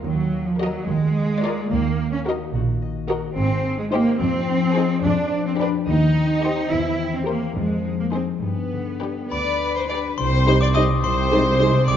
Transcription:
Already playing: A#3
0.04 D#2 D#3 F#3
0.32 A#3
0.47 F3
0.60 F#3 F#4 A#4 D#5
0.88 D#2 D#3 G#3
1.16 A#3
1.43 F4 A#4 D5
1.71 D#2 D#3 A#3
1.99 A#3
2.13 C#4
2.27 D#4 F#4 A#4 D#5
2.54 A#1 F#4
2.82 D#5
3.09 F#4 A#4 D#5
3.37 G#1 G#2 C4
3.65 D#4
3.79 G#3
3.92 A#3 D#4 G4 C5
4.20 F2 F3 C4
4.48 D#4
4.76 D#4 G#4 C5
5.03 F2 F3 D4
5.31 D4
5.46 C4
5.59 D4 G4 B4
5.87 D#2 D#3 D#4
6.16 C4
6.43 G4 C5
6.71 E2 E3 E4
6.99 C4
7.14 C4
7.27 A#3 G4 A#4 C5
7.56 F2 F3 G#3
7.85 D#4
7.99 A#3
8.13 C4 D#4 G#4 C5
8.42 G2 B3
8.72 D3
9.01 G3 D4 G4 B4
9.32 D2 D4 B4 D5 B5
9.62 G4
9.76 C5
9.90 D4 G4 D5
10.18 C2 C3 C5 C6
10.33 C4
10.46 G3 D#4 G4 C5
10.61 D#4 D5 D6
10.74 G3 D#4 G4 C5 D#5 D#6
10.89 D#4
11.03 C2 C3 C5 C6
11.17 C4
11.31 G#3 D#4 G#4 C5
11.45 D#4
11.59 G#3 D#4 G#4 C5 D#5
11.74 G#4
11.87 C2 C3 D5 D6

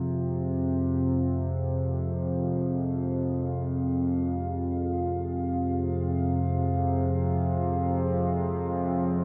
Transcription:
Already playing: F2 C3 C4 F4 G#4 F5
7.83 F3
8.79 C#5

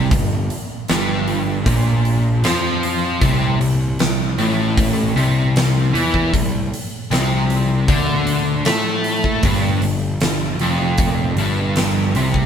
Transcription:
Already playing: C3
0.11 G1 G2, kick, open hi-hat
0.50 open hi-hat
0.88 G1 G2, snare, open hi-hat
1.28 open hi-hat
1.66 A#1 A#2, kick, open hi-hat
2.05 open hi-hat
2.43 F2 F3, snare, open hi-hat
2.83 open hi-hat
3.21 C2 C3, kick, open hi-hat
3.60 C2 C3, open hi-hat
3.99 C2 C3, snare, open hi-hat
4.38 A1 A2, open hi-hat
4.77 kick, open hi-hat
5.15 C2 C3, open hi-hat
5.56 snare, open hi-hat
5.94 E2 E3, open hi-hat
6.14 kick
6.33 C2 C3, kick, open hi-hat
6.74 open hi-hat
7.11 C2 C3, snare, open hi-hat
7.50 open hi-hat
7.88 D2 D3, kick, open hi-hat
8.27 open hi-hat
8.65 A2 A3, snare, open hi-hat
9.04 open hi-hat
9.24 kick
9.43 G1 G2, kick, open hi-hat
9.82 G1 G2, open hi-hat
10.20 G1 G2, snare, open hi-hat
10.58 F1 F2, open hi-hat
10.98 kick, open hi-hat
11.36 G1 G2, open hi-hat
11.76 snare, open hi-hat
12.14 C2 C3, open hi-hat
12.34 kick

